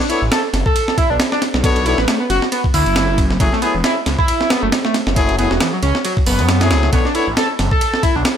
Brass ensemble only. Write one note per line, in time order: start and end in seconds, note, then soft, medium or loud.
0.09 0.22 B3 medium
0.09 0.22 D4 medium
0.09 0.22 A4 medium
0.09 0.22 C#5 medium
1.64 1.83 B3 loud
1.64 1.83 D4 medium
1.64 1.83 A4 medium
1.64 1.83 C#5 loud
1.86 1.99 B3 medium
1.86 1.99 D4 medium
1.86 1.99 A4 medium
1.86 1.99 C#5 loud
3.40 3.53 F#3 medium
3.40 3.53 A3 medium
3.40 3.53 E4 medium
3.40 3.53 G#4 medium
3.62 3.75 F#3 medium
3.62 3.75 A3 medium
3.62 3.75 E4 medium
3.62 3.75 G#4 medium
5.16 5.35 F#3 loud
5.16 5.35 A3 medium
5.16 5.35 E4 medium
5.16 5.35 G#4 loud
5.38 5.51 F#3 medium
5.38 5.51 A3 medium
5.38 5.51 E4 medium
5.38 5.51 G#4 loud
6.61 6.91 F#3 loud
6.61 6.91 A3 medium
6.61 6.91 E4 medium
6.61 6.91 G#4 loud
6.93 7.06 B3 medium
6.93 7.06 D4 medium
6.93 7.06 A4 medium
6.93 7.06 C#5 medium
7.15 7.28 B3 medium
7.15 7.28 D4 medium
7.15 7.28 A4 medium
7.15 7.28 C#5 medium